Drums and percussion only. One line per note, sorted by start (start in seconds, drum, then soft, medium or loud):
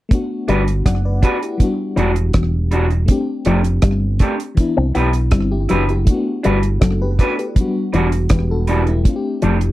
0.11 kick loud
0.11 closed hi-hat medium
0.48 closed hi-hat medium
0.68 closed hi-hat medium
0.86 kick loud
0.86 cross-stick medium
0.86 closed hi-hat medium
1.23 kick medium
1.23 closed hi-hat medium
1.43 closed hi-hat medium
1.60 kick loud
1.60 closed hi-hat medium
1.97 closed hi-hat medium
2.16 closed hi-hat medium
2.33 kick loud
2.33 cross-stick loud
2.33 closed hi-hat medium
2.72 closed hi-hat medium
2.90 closed hi-hat soft
3.08 kick medium
3.08 closed hi-hat medium
3.45 closed hi-hat medium
3.64 closed hi-hat medium
3.82 kick loud
3.82 cross-stick medium
3.82 closed hi-hat medium
4.19 kick medium
4.19 closed hi-hat medium
4.40 closed hi-hat medium
4.57 kick loud
4.57 closed hi-hat medium
4.95 closed hi-hat medium
5.13 closed hi-hat medium
5.31 kick loud
5.31 cross-stick loud
5.31 closed hi-hat medium
5.69 closed hi-hat medium
5.89 closed hi-hat soft
6.07 kick medium
6.07 closed hi-hat medium
6.44 closed hi-hat medium
6.63 closed hi-hat medium
6.82 kick loud
6.82 cross-stick loud
6.82 closed hi-hat medium
7.19 kick medium
7.19 cross-stick medium
7.19 closed hi-hat medium
7.39 closed hi-hat medium
7.56 kick loud
7.56 closed hi-hat medium
7.94 closed hi-hat medium
8.12 closed hi-hat medium
8.29 kick loud
8.29 cross-stick loud
8.29 closed hi-hat medium
8.67 closed hi-hat medium
8.87 closed hi-hat soft
9.05 kick loud
9.05 closed hi-hat medium
9.42 closed hi-hat medium
9.61 closed hi-hat medium